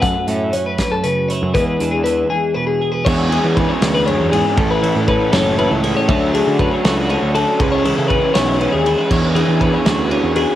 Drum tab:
CC |------|------|x-----|------|
RD |------|------|-xxxxx|xxxxxx|
HH |xxxxxx|xxx---|------|------|
SD |---o--|------|---o--|---o--|
BD |o--o--|o-----|o-o---|o-o---|

CC |------|------|x-----|
RD |xxxxxx|xxxxxx|-xxxxx|
HH |------|------|------|
SD |---o--|---o--|---o--|
BD |o-o---|o-o---|o-o---|